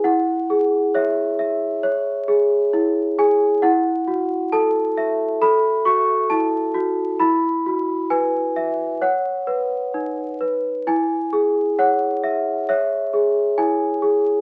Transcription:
\new Staff \with { instrumentName = "Celesta" } { \time 4/4 \key e \major \tempo 4 = 67 << { fis''4 e''2~ e''8 gis''8 | fis''4 a''4 b''8 cis'''8 a''4 | b''4 gis''4 fis''4. r8 | gis''4 fis''4 e''4 gis''4 | } \\ { e'8 gis'8 cis''8 e''8 cis''8 gis'8 e'8 gis'8 | e'8 fis'8 a'8 e''8 a'8 fis'8 e'8 fis'8 | e'8 fis'8 b'8 e''8 cis''8 b'8 dis'8 b'8 | e'8 gis'8 cis''8 e''8 cis''8 gis'8 e'8 gis'8 | } >> }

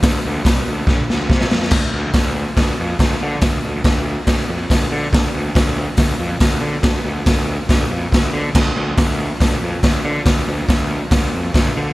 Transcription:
<<
  \new Staff \with { instrumentName = "Picked electric bass" } { \clef bass \time 4/4 \key d \minor \tempo 4 = 140 d,8 d,8 c,8 d,8 d,8 d,8 c8 f,8 | d,8 d,8 d,4 d,8 f,8 d,8 d8 | d,8 d,8 d,4 d,8 f,8 d,8 d8 | d,8 d,8 d,4 d,8 f,8 d,8 d8 |
d,8 d,8 d,4 d,8 f,8 d,8 d8 | d,8 d,8 d,4 d,8 f,8 d,8 d8 | d,8 d,8 d,4 d,8 f,8 d,8 d8 | }
  \new DrumStaff \with { instrumentName = "Drums" } \drummode { \time 4/4 <hho bd sn>4 <hho bd sn>4 <bd sn>8 sn8 <bd sn>16 sn16 sn16 sn16 | <cymc bd sn>4 <hho bd sn>4 <hho bd sn>4 <hho bd sn>4 | <hho bd sn>4 <hho bd sn>4 <hho bd sn>4 <hho bd sn>4 | <hho bd sn>4 <hho bd sn>4 <hho bd sn>4 <hho bd sn>4 |
<hho bd sn>4 <hho bd sn>4 <hho bd sn>4 <hho bd sn>4 | <cymc bd sn>4 <hho bd sn>4 <hho bd sn>4 <hho bd sn>4 | <hho bd sn>4 <hho bd sn>4 <hho bd sn>4 <hho bd sn>4 | }
>>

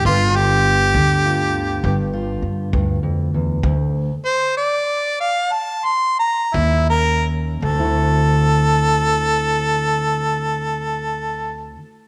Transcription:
<<
  \new Staff \with { instrumentName = "Harmonica" } { \time 12/8 \key g \major \tempo 4. = 61 f'8 g'2. r2 r8 | r4 c''8 d''4 f''8 a''8 c'''8 bes''8 e'8 ais'8 r8 | a'1. | }
  \new Staff \with { instrumentName = "Steel-string acoustic guitar" } { \clef bass \time 12/8 \key g \major << { <d b>8 f'4. f'4. f'2~ f'8 | r1 r4 cis'4 | <d c' e' fis'>1. | } \\ { g,4. d4. g,4. g,8 f,8 e,8 | d,4 r2. r8 dis,4. | d,1. | } >> }
  \new Staff \with { instrumentName = "Upright bass" } { \clef bass \time 12/8 \key g \major g,,4. d,4. g,,4 g,8 d,4. | d,4 r2. r8 dis,4. | d,1. | }
  \new DrumStaff \with { instrumentName = "Drums" } \drummode { \time 12/8 bd4. bd4. bd4. bd4. | bd4. r4. r4. bd4. | r4. r4. r4. r4. | }
>>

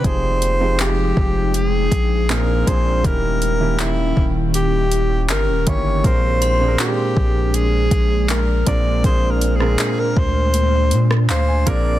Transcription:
<<
  \new Staff \with { instrumentName = "Synth bell" } { \time 4/4 \key bes \mixolydian \tempo 4 = 80 bes''8 r2. r8 | r1 | r8 c'''2.~ c'''8~ | c'''8 r2. r8 | }
  \new Staff \with { instrumentName = "Alto saxophone" } { \time 4/4 \key bes \mixolydian c''4 g'4 aes'4 bes'8 c''8 | bes'4 fes'8. r16 g'4 bes'8 des''8 | c''4 g'4 aes'4 bes'8 d''8 | \tuplet 3/2 { c''8 bes'8 aes'8~ } aes'16 bes'16 c''4. c''8 d''8 | }
  \new Staff \with { instrumentName = "Ambient pad" } { \time 4/4 \key bes \mixolydian <f aes ees' g''>2. r4 | <ees des' fes' g'>1 | <aes bes d'>1~ | <aes bes d'>1 | }
  \new Staff \with { instrumentName = "Grand piano" } { \time 4/4 \key bes \mixolydian << { r1 | r1 | r1 | r2. f''16 aes''8. | } \\ { <f c' ees' g' aes'>8 r16 <f aes c' ees' g'>4. r8. <bes, bes c' d' aes'>8 <bes, bes c' d' aes'>8 | <ees bes des' fes' g'>8 r16 <ees bes des' fes' g'>4. r4 r16 <ees bes des' fes' g'>8 | <bes, aes c' d' bes'>8 r16 <bes, aes c' d' aes' bes'>4. r4 r16 <bes, aes c' d' bes'>8 | <bes, aes c' d' aes'>8 r16 <bes, aes c' d' bes'>4. r4 r16 <bes, aes c' d' bes'>8 | } >> }
  \new Staff \with { instrumentName = "808-style bass" } { \clef bass \time 4/4 \key bes \mixolydian f,,4. f,,4 bes,,4 bes,,8 | r4. ees,,4. g,,16 ees,,16 g,,8 | bes,,4 r8 bes,,4 bes,,4 bes,,8 | bes,,4 r8 d,4 bes,8 d,8 bes,,8 | }
  \new DrumStaff \with { instrumentName = "Drums" } \drummode { \time 4/4 <hh bd>8 hh8 <hc hh>8 bd8 hh8 <hh bd>8 <hc hh>8 <hh bd>8 | <hh bd>8 hh8 <hc hh>8 bd8 hh8 hh8 <hc hh>8 <hh bd>8 | <hh bd>8 hh8 <hc hh>8 bd8 hh8 <hh bd>8 <hc hh>8 <hh bd>8 | <hh bd>8 hh16 ss16 <hc hh>8 bd8 hh8 hh16 ss16 <hc hh>8 <hh bd>8 | }
>>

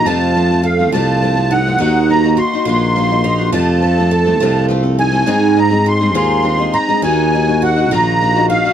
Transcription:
<<
  \new Staff \with { instrumentName = "Accordion" } { \time 6/8 \key f \phrygian \tempo 4. = 69 a''4 f''8 a''4 ges''8~ | ges''8 bes''8 c'''8 c'''4. | a''2 r8 aes''8~ | aes''8 bes''8 c'''8 c'''4 bes''8 |
aes''4 ges''8 bes''4 f''8 | }
  \new Staff \with { instrumentName = "Twelve-string acoustic guitar" } { \time 6/8 \key f \phrygian f'4 a'8 f'4 ees'8 | ees'4 ges'8 f'4 ees'8 | f'4 a'8 f'4 ees'8 | ees'4 ges'8 f'4 ees'8 |
ees'4 ges'8 f'4 ees'8 | }
  \new Staff \with { instrumentName = "Steel-string acoustic guitar" } { \time 6/8 \key f \phrygian <f, c f a c' f'>8 <f a c' f'>16 <f a c' f'>8 <f a c' f'>16 <f, c f a c' f'>8 <f a c' f'>16 <f a c' f'>8 <f a c' f'>16 | <ees bes ees' ges'>8 <ees bes ees' ges'>16 <bes ees' ges'>8 <bes ees' ges'>16 <ees bes ees' ges'>8 <ees bes ees' ges'>16 <bes ees' ges'>8 <bes ees' ges'>16 | <f, c f a c' a'>8 <f a c' a'>16 <f a c' a'>8 <f a c' a'>16 <f, c f a c' a'>8 <f a c' a'>16 <f a c' a'>8 <f a c' a'>16 | <aes, ees aes c' ees' aes'>8 <aes c' ees' aes'>16 <aes c' ees' aes'>8 <aes c' ees' aes'>16 <aes, ees aes c' ees' aes'>8 <aes c' ees' aes'>16 <aes c' ees' aes'>8 <aes c' ees' aes'>16 |
<ees bes ees' ges'>8 <ees bes ees' ges'>16 <bes ees' ges'>8 <bes ees' ges'>16 <ees bes ees' ges'>8 <ees bes ees' ges'>16 <bes ees' ges'>8 <bes ees' ges'>16 | }
  \new Staff \with { instrumentName = "Tuba" } { \clef bass \time 6/8 \key f \phrygian f,4. c,4. | ees,4 r8 bes,,4. | f,4. c,4. | aes,4. ees,4 r8 |
ees,4. bes,,4. | }
>>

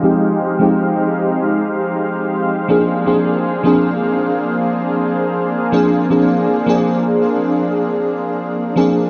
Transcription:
<<
  \new Staff \with { instrumentName = "Analog synth pad" } { \time 4/4 \key bes \mixolydian \tempo 4 = 79 << { <c'' f''>1~ | <c'' f''>1~ | <c'' f''>1 | } \\ { <aes ees' g'>2.~ <aes ees' g'>8 <bes d' aes'>8~ | <bes d' aes'>1~ | <bes d' aes'>1 | } >> }
  \new Staff \with { instrumentName = "FM electric piano" } { \time 4/4 \key bes \mixolydian <f aes c' ees' g'>8. <f aes c' ees' g'>2~ <f aes c' ees' g'>8. <f bes c' d' aes'>8 | <f bes c' d' aes'>8. <f bes c' d' aes'>2~ <f bes c' d' aes'>8. <f bes c' d' aes'>8 | <f bes c' d' aes'>8. <f bes c' d' aes'>2~ <f bes c' d' aes'>8. <f bes c' d' aes'>8 | }
>>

